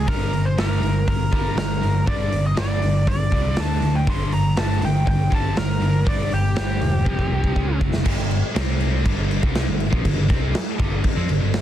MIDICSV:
0, 0, Header, 1, 7, 480
1, 0, Start_track
1, 0, Key_signature, -2, "minor"
1, 0, Tempo, 498339
1, 74, Time_signature, 4, 2, 24, 8
1, 11187, End_track
2, 0, Start_track
2, 0, Title_t, "Lead electric guitar"
2, 0, Program_c, 0, 29
2, 83, Note_on_c, 0, 70, 89
2, 437, Note_on_c, 0, 72, 89
2, 450, Note_off_c, 0, 70, 0
2, 560, Note_off_c, 0, 72, 0
2, 570, Note_on_c, 0, 70, 84
2, 1037, Note_off_c, 0, 70, 0
2, 1048, Note_on_c, 0, 70, 80
2, 1513, Note_off_c, 0, 70, 0
2, 1524, Note_on_c, 0, 70, 84
2, 1967, Note_off_c, 0, 70, 0
2, 2003, Note_on_c, 0, 74, 82
2, 2370, Note_off_c, 0, 74, 0
2, 2374, Note_on_c, 0, 75, 90
2, 2489, Note_off_c, 0, 75, 0
2, 2493, Note_on_c, 0, 74, 90
2, 2960, Note_off_c, 0, 74, 0
2, 2972, Note_on_c, 0, 74, 83
2, 3460, Note_off_c, 0, 74, 0
2, 3468, Note_on_c, 0, 81, 83
2, 3808, Note_on_c, 0, 79, 81
2, 3824, Note_off_c, 0, 81, 0
2, 3928, Note_off_c, 0, 79, 0
2, 3946, Note_on_c, 0, 84, 93
2, 4173, Note_off_c, 0, 84, 0
2, 4177, Note_on_c, 0, 82, 96
2, 4411, Note_off_c, 0, 82, 0
2, 4415, Note_on_c, 0, 81, 89
2, 4655, Note_off_c, 0, 81, 0
2, 4668, Note_on_c, 0, 79, 88
2, 4892, Note_off_c, 0, 79, 0
2, 4903, Note_on_c, 0, 79, 96
2, 5139, Note_off_c, 0, 79, 0
2, 5147, Note_on_c, 0, 81, 87
2, 5358, Note_off_c, 0, 81, 0
2, 5381, Note_on_c, 0, 70, 84
2, 5861, Note_on_c, 0, 74, 81
2, 5866, Note_off_c, 0, 70, 0
2, 6076, Note_off_c, 0, 74, 0
2, 6103, Note_on_c, 0, 67, 75
2, 7495, Note_off_c, 0, 67, 0
2, 11187, End_track
3, 0, Start_track
3, 0, Title_t, "Distorted electric guitar"
3, 0, Program_c, 1, 30
3, 67, Note_on_c, 1, 43, 82
3, 70, Note_on_c, 1, 50, 91
3, 76, Note_on_c, 1, 55, 103
3, 296, Note_off_c, 1, 43, 0
3, 298, Note_off_c, 1, 50, 0
3, 301, Note_off_c, 1, 55, 0
3, 308, Note_on_c, 1, 43, 65
3, 309, Note_on_c, 1, 50, 71
3, 527, Note_off_c, 1, 43, 0
3, 528, Note_off_c, 1, 50, 0
3, 554, Note_on_c, 1, 43, 73
3, 557, Note_on_c, 1, 50, 95
3, 562, Note_on_c, 1, 55, 91
3, 780, Note_off_c, 1, 43, 0
3, 782, Note_off_c, 1, 50, 0
3, 784, Note_off_c, 1, 55, 0
3, 792, Note_on_c, 1, 43, 69
3, 795, Note_on_c, 1, 50, 74
3, 1010, Note_off_c, 1, 43, 0
3, 1011, Note_off_c, 1, 50, 0
3, 1034, Note_on_c, 1, 43, 69
3, 1035, Note_on_c, 1, 50, 76
3, 1251, Note_off_c, 1, 43, 0
3, 1251, Note_off_c, 1, 50, 0
3, 1263, Note_on_c, 1, 43, 81
3, 1266, Note_on_c, 1, 50, 80
3, 1270, Note_on_c, 1, 55, 105
3, 1491, Note_off_c, 1, 43, 0
3, 1497, Note_off_c, 1, 50, 0
3, 1499, Note_off_c, 1, 55, 0
3, 1503, Note_on_c, 1, 43, 71
3, 1507, Note_on_c, 1, 50, 88
3, 1726, Note_off_c, 1, 43, 0
3, 1727, Note_off_c, 1, 50, 0
3, 1745, Note_on_c, 1, 43, 65
3, 1749, Note_on_c, 1, 50, 72
3, 1967, Note_off_c, 1, 43, 0
3, 1969, Note_off_c, 1, 50, 0
3, 1990, Note_on_c, 1, 43, 97
3, 1996, Note_on_c, 1, 50, 98
3, 1996, Note_on_c, 1, 55, 104
3, 2219, Note_off_c, 1, 43, 0
3, 2222, Note_off_c, 1, 50, 0
3, 2222, Note_off_c, 1, 55, 0
3, 2232, Note_on_c, 1, 43, 75
3, 2235, Note_on_c, 1, 50, 81
3, 2451, Note_off_c, 1, 43, 0
3, 2452, Note_off_c, 1, 50, 0
3, 2471, Note_on_c, 1, 43, 82
3, 2476, Note_on_c, 1, 50, 85
3, 2478, Note_on_c, 1, 55, 91
3, 2700, Note_off_c, 1, 43, 0
3, 2703, Note_off_c, 1, 50, 0
3, 2704, Note_off_c, 1, 55, 0
3, 2718, Note_on_c, 1, 43, 72
3, 2721, Note_on_c, 1, 50, 84
3, 2934, Note_off_c, 1, 43, 0
3, 2936, Note_off_c, 1, 50, 0
3, 2955, Note_on_c, 1, 43, 70
3, 2960, Note_on_c, 1, 50, 73
3, 3173, Note_off_c, 1, 43, 0
3, 3175, Note_off_c, 1, 50, 0
3, 3187, Note_on_c, 1, 43, 82
3, 3196, Note_on_c, 1, 50, 102
3, 3202, Note_on_c, 1, 55, 94
3, 3419, Note_off_c, 1, 43, 0
3, 3423, Note_off_c, 1, 50, 0
3, 3426, Note_off_c, 1, 55, 0
3, 3434, Note_on_c, 1, 50, 87
3, 3442, Note_on_c, 1, 57, 91
3, 3446, Note_on_c, 1, 62, 102
3, 3662, Note_off_c, 1, 50, 0
3, 3666, Note_off_c, 1, 57, 0
3, 3668, Note_off_c, 1, 62, 0
3, 3681, Note_on_c, 1, 50, 66
3, 3684, Note_on_c, 1, 57, 71
3, 3896, Note_off_c, 1, 50, 0
3, 3898, Note_off_c, 1, 57, 0
3, 3921, Note_on_c, 1, 43, 98
3, 3923, Note_on_c, 1, 50, 107
3, 3928, Note_on_c, 1, 55, 105
3, 4146, Note_off_c, 1, 43, 0
3, 4147, Note_off_c, 1, 50, 0
3, 4149, Note_off_c, 1, 55, 0
3, 4160, Note_on_c, 1, 43, 74
3, 4164, Note_on_c, 1, 50, 81
3, 4376, Note_off_c, 1, 43, 0
3, 4378, Note_off_c, 1, 50, 0
3, 4398, Note_on_c, 1, 43, 87
3, 4404, Note_on_c, 1, 50, 79
3, 4405, Note_on_c, 1, 55, 90
3, 4625, Note_off_c, 1, 43, 0
3, 4628, Note_off_c, 1, 50, 0
3, 4629, Note_off_c, 1, 55, 0
3, 4641, Note_on_c, 1, 43, 76
3, 4646, Note_on_c, 1, 50, 86
3, 4857, Note_off_c, 1, 43, 0
3, 4859, Note_off_c, 1, 50, 0
3, 4869, Note_on_c, 1, 43, 77
3, 4877, Note_on_c, 1, 50, 83
3, 5091, Note_off_c, 1, 43, 0
3, 5095, Note_off_c, 1, 50, 0
3, 5108, Note_on_c, 1, 43, 93
3, 5114, Note_on_c, 1, 50, 96
3, 5117, Note_on_c, 1, 55, 98
3, 5337, Note_off_c, 1, 43, 0
3, 5342, Note_off_c, 1, 50, 0
3, 5345, Note_off_c, 1, 55, 0
3, 5348, Note_on_c, 1, 43, 70
3, 5353, Note_on_c, 1, 50, 85
3, 5571, Note_off_c, 1, 43, 0
3, 5574, Note_off_c, 1, 50, 0
3, 5584, Note_on_c, 1, 43, 69
3, 5587, Note_on_c, 1, 50, 75
3, 5809, Note_off_c, 1, 43, 0
3, 5811, Note_off_c, 1, 50, 0
3, 5825, Note_on_c, 1, 43, 97
3, 5828, Note_on_c, 1, 50, 100
3, 5829, Note_on_c, 1, 55, 97
3, 6060, Note_off_c, 1, 43, 0
3, 6061, Note_off_c, 1, 50, 0
3, 6062, Note_off_c, 1, 55, 0
3, 6071, Note_on_c, 1, 43, 60
3, 6073, Note_on_c, 1, 50, 82
3, 6293, Note_off_c, 1, 43, 0
3, 6294, Note_off_c, 1, 50, 0
3, 6313, Note_on_c, 1, 43, 89
3, 6321, Note_on_c, 1, 50, 92
3, 6324, Note_on_c, 1, 55, 102
3, 6540, Note_off_c, 1, 43, 0
3, 6544, Note_off_c, 1, 50, 0
3, 6549, Note_off_c, 1, 55, 0
3, 6551, Note_on_c, 1, 43, 66
3, 6555, Note_on_c, 1, 50, 75
3, 6773, Note_off_c, 1, 43, 0
3, 6775, Note_off_c, 1, 50, 0
3, 6791, Note_on_c, 1, 41, 87
3, 6799, Note_on_c, 1, 48, 94
3, 6803, Note_on_c, 1, 53, 98
3, 7015, Note_off_c, 1, 41, 0
3, 7021, Note_off_c, 1, 48, 0
3, 7024, Note_off_c, 1, 53, 0
3, 7027, Note_on_c, 1, 41, 86
3, 7033, Note_on_c, 1, 48, 87
3, 7036, Note_on_c, 1, 53, 97
3, 7261, Note_off_c, 1, 41, 0
3, 7264, Note_off_c, 1, 48, 0
3, 7265, Note_off_c, 1, 53, 0
3, 7272, Note_on_c, 1, 49, 84
3, 7276, Note_on_c, 1, 56, 95
3, 7282, Note_on_c, 1, 61, 92
3, 7503, Note_off_c, 1, 49, 0
3, 7503, Note_off_c, 1, 56, 0
3, 7508, Note_off_c, 1, 61, 0
3, 7513, Note_on_c, 1, 49, 63
3, 7515, Note_on_c, 1, 56, 74
3, 7734, Note_off_c, 1, 49, 0
3, 7735, Note_off_c, 1, 56, 0
3, 7748, Note_on_c, 1, 43, 104
3, 7757, Note_on_c, 1, 50, 118
3, 7866, Note_off_c, 1, 43, 0
3, 7868, Note_off_c, 1, 50, 0
3, 7877, Note_on_c, 1, 43, 59
3, 7879, Note_on_c, 1, 50, 73
3, 8072, Note_off_c, 1, 43, 0
3, 8073, Note_off_c, 1, 50, 0
3, 8231, Note_on_c, 1, 48, 88
3, 8238, Note_on_c, 1, 55, 99
3, 8243, Note_on_c, 1, 60, 100
3, 8701, Note_off_c, 1, 55, 0
3, 8703, Note_on_c, 1, 43, 86
3, 8708, Note_off_c, 1, 48, 0
3, 8712, Note_on_c, 1, 50, 96
3, 8713, Note_on_c, 1, 55, 118
3, 8715, Note_off_c, 1, 60, 0
3, 9049, Note_off_c, 1, 55, 0
3, 9054, Note_off_c, 1, 50, 0
3, 9058, Note_on_c, 1, 48, 92
3, 9061, Note_on_c, 1, 55, 96
3, 9065, Note_off_c, 1, 43, 0
3, 9068, Note_on_c, 1, 60, 105
3, 9297, Note_off_c, 1, 48, 0
3, 9301, Note_on_c, 1, 50, 77
3, 9302, Note_on_c, 1, 43, 64
3, 9304, Note_off_c, 1, 55, 0
3, 9307, Note_off_c, 1, 60, 0
3, 9503, Note_off_c, 1, 50, 0
3, 9504, Note_off_c, 1, 43, 0
3, 9538, Note_on_c, 1, 46, 98
3, 9543, Note_on_c, 1, 53, 109
3, 9660, Note_off_c, 1, 46, 0
3, 9664, Note_off_c, 1, 53, 0
3, 9664, Note_on_c, 1, 50, 80
3, 9665, Note_on_c, 1, 43, 70
3, 9769, Note_off_c, 1, 43, 0
3, 9773, Note_off_c, 1, 50, 0
3, 9781, Note_on_c, 1, 43, 58
3, 9785, Note_on_c, 1, 50, 66
3, 9902, Note_off_c, 1, 50, 0
3, 9905, Note_on_c, 1, 48, 93
3, 9910, Note_off_c, 1, 43, 0
3, 9910, Note_on_c, 1, 55, 101
3, 9918, Note_on_c, 1, 60, 107
3, 10145, Note_off_c, 1, 48, 0
3, 10147, Note_off_c, 1, 55, 0
3, 10151, Note_off_c, 1, 60, 0
3, 10386, Note_on_c, 1, 43, 94
3, 10389, Note_on_c, 1, 50, 108
3, 10394, Note_on_c, 1, 55, 105
3, 10615, Note_off_c, 1, 43, 0
3, 10616, Note_off_c, 1, 50, 0
3, 10627, Note_on_c, 1, 43, 65
3, 10628, Note_on_c, 1, 50, 78
3, 10629, Note_off_c, 1, 55, 0
3, 10736, Note_off_c, 1, 50, 0
3, 10740, Note_on_c, 1, 53, 102
3, 10743, Note_on_c, 1, 60, 109
3, 10752, Note_off_c, 1, 43, 0
3, 10860, Note_off_c, 1, 53, 0
3, 10863, Note_off_c, 1, 60, 0
3, 10863, Note_on_c, 1, 43, 64
3, 10864, Note_on_c, 1, 50, 73
3, 10968, Note_off_c, 1, 43, 0
3, 10975, Note_off_c, 1, 50, 0
3, 10979, Note_on_c, 1, 43, 66
3, 10987, Note_on_c, 1, 50, 81
3, 11180, Note_off_c, 1, 43, 0
3, 11183, Note_off_c, 1, 50, 0
3, 11187, End_track
4, 0, Start_track
4, 0, Title_t, "Picked electric bass"
4, 0, Program_c, 2, 34
4, 78, Note_on_c, 2, 31, 83
4, 518, Note_off_c, 2, 31, 0
4, 558, Note_on_c, 2, 31, 82
4, 776, Note_off_c, 2, 31, 0
4, 788, Note_on_c, 2, 31, 90
4, 1011, Note_off_c, 2, 31, 0
4, 1040, Note_on_c, 2, 31, 88
4, 1257, Note_off_c, 2, 31, 0
4, 1283, Note_on_c, 2, 31, 84
4, 1499, Note_off_c, 2, 31, 0
4, 1513, Note_on_c, 2, 31, 83
4, 1957, Note_off_c, 2, 31, 0
4, 1999, Note_on_c, 2, 31, 87
4, 2217, Note_off_c, 2, 31, 0
4, 2236, Note_on_c, 2, 31, 81
4, 2456, Note_off_c, 2, 31, 0
4, 2483, Note_on_c, 2, 31, 83
4, 2700, Note_off_c, 2, 31, 0
4, 2720, Note_on_c, 2, 31, 82
4, 2938, Note_off_c, 2, 31, 0
4, 2961, Note_on_c, 2, 31, 93
4, 3179, Note_off_c, 2, 31, 0
4, 3197, Note_on_c, 2, 36, 86
4, 3417, Note_off_c, 2, 36, 0
4, 3440, Note_on_c, 2, 38, 83
4, 3659, Note_off_c, 2, 38, 0
4, 3679, Note_on_c, 2, 38, 82
4, 3899, Note_off_c, 2, 38, 0
4, 3927, Note_on_c, 2, 31, 89
4, 4366, Note_off_c, 2, 31, 0
4, 4412, Note_on_c, 2, 31, 87
4, 4626, Note_off_c, 2, 31, 0
4, 4642, Note_on_c, 2, 31, 88
4, 4860, Note_off_c, 2, 31, 0
4, 4883, Note_on_c, 2, 31, 91
4, 5101, Note_off_c, 2, 31, 0
4, 5122, Note_on_c, 2, 31, 85
4, 5341, Note_off_c, 2, 31, 0
4, 5369, Note_on_c, 2, 31, 87
4, 5807, Note_off_c, 2, 31, 0
4, 5850, Note_on_c, 2, 31, 87
4, 6066, Note_off_c, 2, 31, 0
4, 6086, Note_on_c, 2, 31, 83
4, 6304, Note_off_c, 2, 31, 0
4, 6341, Note_on_c, 2, 31, 87
4, 6552, Note_off_c, 2, 31, 0
4, 6574, Note_on_c, 2, 28, 89
4, 6788, Note_off_c, 2, 28, 0
4, 6806, Note_on_c, 2, 29, 91
4, 7024, Note_off_c, 2, 29, 0
4, 7050, Note_on_c, 2, 36, 82
4, 7266, Note_off_c, 2, 36, 0
4, 7288, Note_on_c, 2, 37, 81
4, 7505, Note_off_c, 2, 37, 0
4, 7528, Note_on_c, 2, 29, 78
4, 7745, Note_off_c, 2, 29, 0
4, 7765, Note_on_c, 2, 31, 91
4, 7876, Note_off_c, 2, 31, 0
4, 7886, Note_on_c, 2, 31, 85
4, 8108, Note_off_c, 2, 31, 0
4, 8248, Note_on_c, 2, 36, 95
4, 8692, Note_off_c, 2, 36, 0
4, 8724, Note_on_c, 2, 31, 92
4, 9058, Note_off_c, 2, 31, 0
4, 9089, Note_on_c, 2, 36, 102
4, 9308, Note_off_c, 2, 36, 0
4, 9321, Note_on_c, 2, 31, 80
4, 9544, Note_off_c, 2, 31, 0
4, 9563, Note_on_c, 2, 34, 92
4, 9674, Note_off_c, 2, 34, 0
4, 9683, Note_on_c, 2, 31, 82
4, 9793, Note_off_c, 2, 31, 0
4, 9801, Note_on_c, 2, 31, 87
4, 9912, Note_off_c, 2, 31, 0
4, 9926, Note_on_c, 2, 36, 97
4, 10146, Note_off_c, 2, 36, 0
4, 10400, Note_on_c, 2, 31, 96
4, 10622, Note_off_c, 2, 31, 0
4, 10643, Note_on_c, 2, 31, 89
4, 10752, Note_off_c, 2, 31, 0
4, 10761, Note_on_c, 2, 41, 105
4, 10871, Note_off_c, 2, 41, 0
4, 10884, Note_on_c, 2, 31, 83
4, 10988, Note_off_c, 2, 31, 0
4, 10994, Note_on_c, 2, 31, 83
4, 11187, Note_off_c, 2, 31, 0
4, 11187, End_track
5, 0, Start_track
5, 0, Title_t, "Muted distorted electric guitar strokes"
5, 10137, Note_on_c, 9, 29, 62
5, 10233, Note_off_c, 9, 29, 0
5, 11187, End_track
6, 0, Start_track
6, 0, Title_t, "Muted picked electric bass strokes"
6, 10159, Note_on_c, 9, 29, 44
6, 10255, Note_off_c, 9, 29, 0
6, 11187, End_track
7, 0, Start_track
7, 0, Title_t, "Drums"
7, 77, Note_on_c, 9, 36, 110
7, 78, Note_on_c, 9, 46, 76
7, 173, Note_off_c, 9, 36, 0
7, 175, Note_off_c, 9, 46, 0
7, 320, Note_on_c, 9, 46, 50
7, 416, Note_off_c, 9, 46, 0
7, 560, Note_on_c, 9, 46, 73
7, 564, Note_on_c, 9, 38, 110
7, 656, Note_off_c, 9, 46, 0
7, 660, Note_off_c, 9, 38, 0
7, 799, Note_on_c, 9, 46, 54
7, 895, Note_off_c, 9, 46, 0
7, 1038, Note_on_c, 9, 36, 82
7, 1041, Note_on_c, 9, 46, 69
7, 1134, Note_off_c, 9, 36, 0
7, 1137, Note_off_c, 9, 46, 0
7, 1277, Note_on_c, 9, 36, 88
7, 1277, Note_on_c, 9, 46, 53
7, 1373, Note_off_c, 9, 36, 0
7, 1373, Note_off_c, 9, 46, 0
7, 1516, Note_on_c, 9, 46, 72
7, 1519, Note_on_c, 9, 38, 105
7, 1612, Note_off_c, 9, 46, 0
7, 1616, Note_off_c, 9, 38, 0
7, 1764, Note_on_c, 9, 46, 53
7, 1860, Note_off_c, 9, 46, 0
7, 1997, Note_on_c, 9, 46, 75
7, 1998, Note_on_c, 9, 36, 102
7, 2093, Note_off_c, 9, 46, 0
7, 2094, Note_off_c, 9, 36, 0
7, 2239, Note_on_c, 9, 46, 56
7, 2336, Note_off_c, 9, 46, 0
7, 2475, Note_on_c, 9, 46, 80
7, 2479, Note_on_c, 9, 38, 116
7, 2571, Note_off_c, 9, 46, 0
7, 2575, Note_off_c, 9, 38, 0
7, 2720, Note_on_c, 9, 46, 58
7, 2816, Note_off_c, 9, 46, 0
7, 2959, Note_on_c, 9, 36, 83
7, 2959, Note_on_c, 9, 46, 73
7, 3055, Note_off_c, 9, 36, 0
7, 3055, Note_off_c, 9, 46, 0
7, 3196, Note_on_c, 9, 46, 57
7, 3199, Note_on_c, 9, 36, 86
7, 3292, Note_off_c, 9, 46, 0
7, 3295, Note_off_c, 9, 36, 0
7, 3434, Note_on_c, 9, 46, 74
7, 3438, Note_on_c, 9, 38, 104
7, 3530, Note_off_c, 9, 46, 0
7, 3534, Note_off_c, 9, 38, 0
7, 3680, Note_on_c, 9, 46, 58
7, 3776, Note_off_c, 9, 46, 0
7, 3922, Note_on_c, 9, 36, 108
7, 3923, Note_on_c, 9, 46, 73
7, 4019, Note_off_c, 9, 36, 0
7, 4020, Note_off_c, 9, 46, 0
7, 4162, Note_on_c, 9, 46, 52
7, 4258, Note_off_c, 9, 46, 0
7, 4402, Note_on_c, 9, 46, 72
7, 4405, Note_on_c, 9, 38, 117
7, 4498, Note_off_c, 9, 46, 0
7, 4502, Note_off_c, 9, 38, 0
7, 4642, Note_on_c, 9, 46, 57
7, 4739, Note_off_c, 9, 46, 0
7, 4884, Note_on_c, 9, 36, 88
7, 4885, Note_on_c, 9, 46, 65
7, 4981, Note_off_c, 9, 36, 0
7, 4981, Note_off_c, 9, 46, 0
7, 5124, Note_on_c, 9, 36, 87
7, 5124, Note_on_c, 9, 46, 53
7, 5220, Note_off_c, 9, 36, 0
7, 5220, Note_off_c, 9, 46, 0
7, 5363, Note_on_c, 9, 46, 73
7, 5367, Note_on_c, 9, 38, 108
7, 5460, Note_off_c, 9, 46, 0
7, 5463, Note_off_c, 9, 38, 0
7, 5606, Note_on_c, 9, 46, 54
7, 5702, Note_off_c, 9, 46, 0
7, 5842, Note_on_c, 9, 46, 71
7, 5844, Note_on_c, 9, 36, 113
7, 5938, Note_off_c, 9, 46, 0
7, 5940, Note_off_c, 9, 36, 0
7, 6082, Note_on_c, 9, 46, 53
7, 6179, Note_off_c, 9, 46, 0
7, 6321, Note_on_c, 9, 46, 78
7, 6325, Note_on_c, 9, 38, 116
7, 6417, Note_off_c, 9, 46, 0
7, 6421, Note_off_c, 9, 38, 0
7, 6564, Note_on_c, 9, 46, 59
7, 6661, Note_off_c, 9, 46, 0
7, 6803, Note_on_c, 9, 36, 87
7, 6900, Note_off_c, 9, 36, 0
7, 6923, Note_on_c, 9, 36, 57
7, 7020, Note_off_c, 9, 36, 0
7, 7164, Note_on_c, 9, 36, 65
7, 7260, Note_off_c, 9, 36, 0
7, 7283, Note_on_c, 9, 36, 86
7, 7380, Note_off_c, 9, 36, 0
7, 7523, Note_on_c, 9, 36, 92
7, 7619, Note_off_c, 9, 36, 0
7, 7643, Note_on_c, 9, 38, 82
7, 7739, Note_off_c, 9, 38, 0
7, 7758, Note_on_c, 9, 49, 127
7, 7758, Note_on_c, 9, 57, 86
7, 7762, Note_on_c, 9, 36, 106
7, 7854, Note_off_c, 9, 49, 0
7, 7854, Note_off_c, 9, 57, 0
7, 7859, Note_off_c, 9, 36, 0
7, 8002, Note_on_c, 9, 57, 65
7, 8098, Note_off_c, 9, 57, 0
7, 8244, Note_on_c, 9, 57, 90
7, 8248, Note_on_c, 9, 38, 126
7, 8341, Note_off_c, 9, 57, 0
7, 8344, Note_off_c, 9, 38, 0
7, 8480, Note_on_c, 9, 57, 61
7, 8576, Note_off_c, 9, 57, 0
7, 8722, Note_on_c, 9, 57, 80
7, 8723, Note_on_c, 9, 36, 104
7, 8818, Note_off_c, 9, 57, 0
7, 8819, Note_off_c, 9, 36, 0
7, 8965, Note_on_c, 9, 57, 65
7, 9062, Note_off_c, 9, 57, 0
7, 9083, Note_on_c, 9, 36, 106
7, 9180, Note_off_c, 9, 36, 0
7, 9200, Note_on_c, 9, 57, 83
7, 9204, Note_on_c, 9, 38, 111
7, 9296, Note_off_c, 9, 57, 0
7, 9300, Note_off_c, 9, 38, 0
7, 9440, Note_on_c, 9, 57, 59
7, 9536, Note_off_c, 9, 57, 0
7, 9561, Note_on_c, 9, 36, 110
7, 9657, Note_off_c, 9, 36, 0
7, 9681, Note_on_c, 9, 36, 104
7, 9681, Note_on_c, 9, 57, 84
7, 9777, Note_off_c, 9, 36, 0
7, 9778, Note_off_c, 9, 57, 0
7, 9920, Note_on_c, 9, 36, 103
7, 9921, Note_on_c, 9, 57, 63
7, 9925, Note_on_c, 9, 38, 31
7, 10017, Note_off_c, 9, 36, 0
7, 10018, Note_off_c, 9, 57, 0
7, 10022, Note_off_c, 9, 38, 0
7, 10158, Note_on_c, 9, 57, 91
7, 10162, Note_on_c, 9, 38, 125
7, 10255, Note_off_c, 9, 57, 0
7, 10259, Note_off_c, 9, 38, 0
7, 10396, Note_on_c, 9, 57, 65
7, 10398, Note_on_c, 9, 36, 115
7, 10492, Note_off_c, 9, 57, 0
7, 10495, Note_off_c, 9, 36, 0
7, 10632, Note_on_c, 9, 57, 90
7, 10637, Note_on_c, 9, 36, 92
7, 10728, Note_off_c, 9, 57, 0
7, 10734, Note_off_c, 9, 36, 0
7, 10874, Note_on_c, 9, 57, 68
7, 10970, Note_off_c, 9, 57, 0
7, 11112, Note_on_c, 9, 57, 87
7, 11116, Note_on_c, 9, 38, 112
7, 11187, Note_off_c, 9, 38, 0
7, 11187, Note_off_c, 9, 57, 0
7, 11187, End_track
0, 0, End_of_file